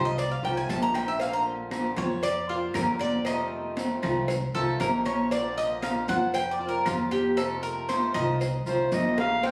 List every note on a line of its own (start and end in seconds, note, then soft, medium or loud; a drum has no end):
0.00 0.40 C2 loud
0.00 0.17 D#3 medium
0.00 0.17 A3 medium
0.00 0.17 C4 medium
0.00 0.17 F4 medium
0.05 0.17 D#5 loud
0.17 0.31 D5 medium
0.17 muted steel-string acoustic guitar stroke medium
0.17 cowbell loud
0.17 high conga soft
0.17 maracas medium
0.31 0.43 F5 medium
0.43 0.67 C2 medium
0.43 0.67 D#3 medium
0.43 0.68 A3 medium
0.43 0.68 C4 medium
0.43 0.68 F4 medium
0.43 0.57 G5 loud
0.43 high conga soft
0.43 low agogo medium
0.57 0.69 G#5 medium
0.68 1.91 A#1 loud
0.68 1.19 D#3 medium
0.68 1.19 A3 medium
0.68 1.20 C4 medium
0.68 1.20 F4 medium
0.68 0.82 A5 medium
0.68 cowbell medium
0.68 high conga medium
0.68 low timbale medium
0.68 low agogo medium
0.68 maracas medium
0.82 0.95 A#5 loud
0.94 1.07 G5 loud
0.94 cowbell medium
0.94 high timbale medium
0.94 low agogo loud
0.94 claves medium
0.94 maracas soft
1.08 1.20 E5 medium
1.20 1.70 D3 medium
1.20 1.71 A#3 medium
1.20 1.71 C4 medium
1.20 1.72 F4 medium
1.20 1.33 F5 medium
1.20 cowbell loud
1.20 high conga soft
1.20 maracas medium
1.33 1.41 A#5 loud
1.46 high conga soft
1.46 low agogo medium
1.71 1.96 D3 medium
1.71 1.97 A#3 medium
1.71 1.97 C4 medium
1.71 1.96 F4 medium
1.71 cowbell medium
1.71 high conga loud
1.71 low timbale medium
1.71 low agogo loud
1.71 claves medium
1.71 maracas medium
1.97 2.70 F2 loud
1.97 2.23 A#3 medium
1.97 2.23 C4 medium
1.97 2.22 F4 medium
1.97 2.23 C#5 loud
1.97 cowbell medium
1.97 high conga loud
1.97 maracas soft
2.23 2.48 D5 loud
2.23 muted steel-string acoustic guitar stroke medium
2.23 cowbell loud
2.23 high conga soft
2.23 low agogo medium
2.23 maracas medium
2.49 2.74 A#3 medium
2.49 2.74 C4 medium
2.49 2.74 F4 medium
2.49 high conga soft
2.74 3.97 F2 loud
2.74 3.25 D3 medium
2.74 3.25 A#3 medium
2.74 3.25 C4 medium
2.74 3.26 F4 medium
2.74 3.00 A#4 medium
2.74 cowbell medium
2.74 high conga medium
2.74 low timbale medium
2.74 low agogo loud
2.74 claves medium
2.74 maracas medium
2.99 3.25 D5 loud
2.99 cowbell medium
2.99 high conga medium
2.99 low agogo medium
2.99 maracas soft
3.25 3.76 C3 medium
3.25 3.76 D#3 medium
3.25 3.76 A3 medium
3.25 3.77 C4 medium
3.25 3.77 F4 medium
3.25 3.74 D#5 medium
3.25 cowbell loud
3.25 low agogo loud
3.25 claves medium
3.25 maracas medium
3.52 high conga soft
3.77 4.02 D#3 medium
3.77 4.02 A3 medium
3.77 4.02 C4 medium
3.77 4.01 F4 medium
3.77 cowbell medium
3.77 high conga loud
3.77 low timbale medium
3.77 low agogo medium
3.77 maracas medium
4.02 4.51 C2 loud
4.02 4.28 D#3 medium
4.02 4.28 A3 medium
4.02 4.28 C4 medium
4.02 4.27 F4 medium
4.02 cowbell medium
4.02 high conga soft
4.02 low conga medium
4.02 low agogo loud
4.02 claves medium
4.02 maracas soft
4.28 muted steel-string acoustic guitar stroke medium
4.28 cowbell loud
4.28 high conga soft
4.28 low conga medium
4.28 maracas medium
4.55 4.79 C2 medium
4.55 4.78 D#3 medium
4.55 4.79 A3 medium
4.55 4.79 C4 medium
4.55 4.79 F4 medium
4.55 4.79 A4 medium
4.55 high conga soft
4.55 low agogo medium
4.79 6.02 A#1 loud
4.79 5.30 D#3 medium
4.79 5.31 A3 medium
4.79 5.31 C4 medium
4.79 5.31 F4 medium
4.79 5.05 A#4 medium
4.79 cowbell medium
4.79 high conga medium
4.79 low timbale medium
4.79 low agogo medium
4.79 maracas medium
5.05 5.31 C#5 loud
5.05 cowbell medium
5.05 high conga medium
5.05 low agogo loud
5.05 claves medium
5.05 maracas soft
5.31 5.82 D3 medium
5.31 5.82 A#3 medium
5.31 5.83 C4 medium
5.31 5.83 F4 medium
5.31 5.57 D5 loud
5.31 cowbell loud
5.31 maracas medium
5.57 5.82 D#5 loud
5.57 high conga soft
5.57 low agogo medium
5.57 maracas medium
5.82 6.08 D3 medium
5.82 6.08 A#3 medium
5.82 6.09 C4 medium
5.82 6.08 F4 medium
5.82 6.08 F5 medium
5.82 cowbell medium
5.82 high conga loud
5.82 low timbale medium
5.82 low agogo loud
5.82 claves medium
5.82 maracas medium
6.08 6.82 F2 loud
6.08 6.35 A#3 medium
6.08 6.34 C4 medium
6.08 6.34 F4 medium
6.08 6.34 F#5 loud
6.08 cowbell medium
6.08 high conga loud
6.08 maracas soft
6.34 6.51 G5 loud
6.34 muted steel-string acoustic guitar stroke medium
6.34 cowbell loud
6.34 high conga soft
6.34 low agogo medium
6.34 maracas medium
6.51 6.68 D5 medium
6.59 6.85 A#3 medium
6.59 6.85 C4 medium
6.59 6.84 F4 medium
6.59 high conga soft
6.69 6.85 A#4 medium
6.85 8.08 F2 medium
6.85 7.36 D3 medium
6.85 7.36 A#3 soft
6.85 7.37 C4 medium
6.85 7.11 F4 medium
6.85 7.37 F4 medium
6.85 cowbell medium
6.85 high conga medium
6.85 low timbale medium
6.85 low agogo loud
6.85 claves medium
6.85 maracas medium
7.11 7.37 G4 medium
7.11 cowbell medium
7.11 high conga medium
7.11 low agogo medium
7.11 maracas soft
7.37 7.88 C3 medium
7.37 7.88 D#3 medium
7.37 7.88 A3 medium
7.37 7.89 C4 medium
7.37 7.89 F4 medium
7.37 7.62 A4 medium
7.37 cowbell loud
7.37 high conga soft
7.37 low agogo loud
7.37 claves medium
7.37 maracas medium
7.63 7.88 A#4 loud
7.63 high conga soft
7.63 maracas medium
7.89 8.14 D#3 medium
7.89 8.14 A3 medium
7.89 8.14 C4 medium
7.89 8.13 F4 medium
7.89 8.14 C5 medium
7.89 cowbell medium
7.89 high conga loud
7.89 low timbale medium
7.89 low agogo medium
7.89 maracas medium
8.14 8.63 C2 loud
8.14 8.39 D#3 medium
8.14 8.40 A3 medium
8.14 8.40 C4 medium
8.14 8.39 F4 medium
8.14 8.62 D#5 loud
8.14 cowbell medium
8.14 high conga soft
8.14 low conga medium
8.14 low agogo loud
8.14 claves medium
8.14 maracas soft
8.40 muted steel-string acoustic guitar stroke medium
8.40 cowbell loud
8.40 high conga soft
8.40 maracas medium
8.66 8.90 C2 medium
8.66 8.91 D#3 medium
8.66 8.91 A3 medium
8.66 8.91 C4 medium
8.66 8.91 F4 medium
8.66 8.95 C5 loud
8.66 high conga soft
8.66 low agogo medium
8.66 maracas medium
8.92 9.51 A#1 loud
8.92 9.42 D#3 medium
8.92 9.43 A3 medium
8.92 9.42 C4 medium
8.92 9.43 F4 medium
8.92 9.19 D#5 loud
8.92 cowbell medium
8.92 high conga medium
8.92 high timbale medium
8.92 low agogo medium
8.92 maracas medium
9.17 9.47 F5 loud
9.17 cowbell medium
9.17 high bongo medium
9.17 high conga medium
9.17 low timbale medium
9.17 low agogo loud
9.17 claves medium
9.17 maracas soft
9.43 9.51 D3 medium
9.43 9.51 A#3 medium
9.43 9.51 C4 medium
9.43 9.51 F4 medium
9.43 9.51 G5 loud
9.43 cowbell loud
9.43 high conga soft